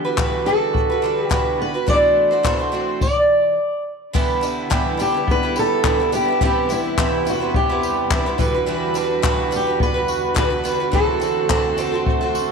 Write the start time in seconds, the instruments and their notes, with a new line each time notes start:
Already playing: twelve-string acoustic guitar D3, clean electric guitar E3 B3 G4, steel-string acoustic guitar G4
0.05 twelve-string acoustic guitar G3 F#4 B4
0.17 twelve-string acoustic guitar D3 E3 G3 F#4 B4, clean electric guitar F#4, kick, clap
0.45 twelve-string acoustic guitar D3 G3 F#4 B4, clean electric guitar D4, steel-string acoustic guitar A4
0.73 clean electric guitar F#4, kick
0.90 twelve-string acoustic guitar G3 F#4 B4
1.02 twelve-string acoustic guitar D3 G3 F#4 B4, clean electric guitar D4
1.27 twelve-string acoustic guitar D3 E3 G3, clean electric guitar F#4, steel-string acoustic guitar G4, kick
1.31 twelve-string acoustic guitar F#4 B4, clap
1.59 clean electric guitar B3, steel-string acoustic guitar B4
1.74 twelve-string acoustic guitar G3 F#4 B4
1.86 twelve-string acoustic guitar E2 E3 A3 D4 F#4 C5, clean electric guitar E3, steel-string acoustic guitar D5, kick
2.16 clean electric guitar A3
2.31 twelve-string acoustic guitar A3 D4 F#4 C5
2.43 twelve-string acoustic guitar E2 E3 A3 D4 F#4 C5, clean electric guitar F#4, steel-string acoustic guitar C5, kick, clap
2.59 twelve-string acoustic guitar A3 D4 F#4 C5
2.72 twelve-string acoustic guitar A3 D4 F#4 C5, clean electric guitar C4
3.01 steel-string acoustic guitar D5, kick, crash
4.13 twelve-string acoustic guitar D3 E3 G3 B3 E4, string section D3 G3 D4 E4 B4, clean electric guitar B3, kick, crash
4.41 twelve-string acoustic guitar D3 G3 B3 E4, clean electric guitar D4, tambourine
4.70 twelve-string acoustic guitar D3 E3 G3 B3 E4, clean electric guitar G4, kick, clap
4.97 twelve-string acoustic guitar D3 G3 B3 E4, clean electric guitar D4, steel-string acoustic guitar G4, tambourine
5.14 twelve-string acoustic guitar G3 B3 E4
5.28 clean electric guitar B3, steel-string acoustic guitar B4, kick
5.43 twelve-string acoustic guitar G3 B3 E4
5.56 clean electric guitar G4, steel-string acoustic guitar A4, tambourine
5.84 twelve-string acoustic guitar D3 E3 G3 B3 E4, clean electric guitar D4, kick, clap
6.00 twelve-string acoustic guitar G3 B3 E4
6.12 twelve-string acoustic guitar D3 G3 B3 E4, clean electric guitar B3, steel-string acoustic guitar G4, tambourine
6.28 twelve-string acoustic guitar G3 B3 E4
6.41 twelve-string acoustic guitar E2 E3 G3 B3 C4 E4, string section E2 C3 G3, clean electric guitar E3, kick
6.45 steel-string acoustic guitar G4
6.69 twelve-string acoustic guitar G3 B3 C4 E4, clean electric guitar E4, steel-string acoustic guitar E4, tambourine
6.98 twelve-string acoustic guitar E2 E3 G3 B3 C4 E4, clean electric guitar G4, kick, clap
7.25 twelve-string acoustic guitar G3 B3 C4 E4, clean electric guitar E4, tambourine
7.29 steel-string acoustic guitar F#4
7.40 twelve-string acoustic guitar G3 B3 C4 E4
7.54 clean electric guitar B3, steel-string acoustic guitar G4, kick
7.69 twelve-string acoustic guitar G3 B3 C4 E4
7.83 clean electric guitar G4, tambourine
8.10 twelve-string acoustic guitar E2 E3 G3 B3 C4 E4, clean electric guitar E4, kick, clap
8.26 twelve-string acoustic guitar G3 B3 C4 E4
8.38 string section E2 D3 F#4, twelve-string acoustic guitar D3 G3 F#4 B4, clean electric guitar E3, kick, tambourine
8.54 twelve-string acoustic guitar G3 F#4 B4
8.66 twelve-string acoustic guitar D3 E3 G3 F#4 B4, clean electric guitar E3
8.94 twelve-string acoustic guitar D3 G3 F#4 B4, clean electric guitar D4, tambourine
9.22 twelve-string acoustic guitar D3 E3 G3 F#4 B4, clean electric guitar F#4, kick, clap
9.51 twelve-string acoustic guitar D3 G3 F#4 B4, clean electric guitar D4, tambourine
9.56 steel-string acoustic guitar G4
9.67 twelve-string acoustic guitar G3 F#4 B4
9.80 clean electric guitar B3, steel-string acoustic guitar B4, kick
9.94 twelve-string acoustic guitar G3 F#4 B4
10.08 clean electric guitar F#4, tambourine
10.34 twelve-string acoustic guitar D3 E3 G3 F#4 B4, clean electric guitar D4, steel-string acoustic guitar B4, kick, clap
10.50 twelve-string acoustic guitar G3 F#4 B4
10.64 twelve-string acoustic guitar D3 G3 F#4 B4, clean electric guitar B3, tambourine
10.80 twelve-string acoustic guitar G3 F#4 B4
10.92 twelve-string acoustic guitar D3 E3 C4 F#4 A4, clean electric guitar E3, string section A3 C4 C5, steel-string acoustic guitar A4, kick
11.20 twelve-string acoustic guitar D3 C4 F#4 A4, clean electric guitar C4, tambourine
11.49 twelve-string acoustic guitar D3 E3 C4 F#4 A4, clean electric guitar F#4, kick, clap
11.77 twelve-string acoustic guitar D3 C4 F#4 A4, clean electric guitar C4, tambourine
11.92 twelve-string acoustic guitar C4 F#4 A4
12.07 clean electric guitar A3, kick
12.21 twelve-string acoustic guitar C4 F#4 A4
12.35 clean electric guitar F#4, tambourine